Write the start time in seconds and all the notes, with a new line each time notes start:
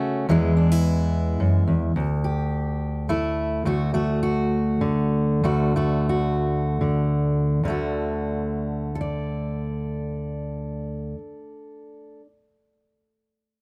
Already playing: C#3 A3 C#4 F#4
0.29 E2 E3 G#3 B3 E4
0.57 D4
0.72 E4
1.40 F#2
1.68 E2
1.96 D2
2.24 G4
3.09 A3 E4
3.65 D2 A3 F#4
3.94 A3 F#4
4.23 F#4
4.81 D3
5.44 D2 A3 F#4
5.76 A3 F#4
6.09 F#4
6.81 D3
7.63 D2 D3
7.68 A3 F#4
8.95 A4
9.01 D5